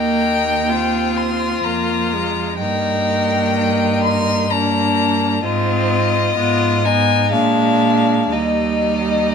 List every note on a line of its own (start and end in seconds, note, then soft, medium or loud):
0.00 1.61 D#2 soft
0.00 0.72 A#3 soft
0.00 0.71 D#4 soft
0.00 1.19 G5 medium
0.69 1.67 C4 soft
0.69 2.59 F4 soft
1.17 1.65 C6 medium
1.64 2.61 F2 soft
1.64 2.14 A#3 soft
1.64 2.58 A#5 medium
2.13 2.62 G#3 medium
2.59 5.44 G2 medium
2.59 4.51 A#3 medium
2.59 3.55 D#4 medium
2.59 4.02 G5 medium
3.57 4.53 D#4 medium
4.04 4.52 C6 medium
4.51 5.43 A#3 medium
4.51 5.44 D4 medium
4.51 5.43 A#5 medium
5.44 6.34 G#2 medium
5.44 6.34 C4 medium
5.44 6.34 F4 soft
5.44 6.87 D#5 medium
6.37 7.34 G#2 medium
6.37 6.84 B3 medium
6.37 6.86 F4 medium
6.84 7.31 B3 medium
6.84 7.33 D#4 soft
6.84 7.31 G#5 medium
7.32 8.32 A#2 medium
7.32 8.34 G#3 medium
7.32 8.34 D4 medium
7.32 8.34 F5 medium
8.32 9.35 D#2 soft
8.32 9.35 G3 soft
8.32 9.35 D#4 soft
8.32 9.35 D#5 medium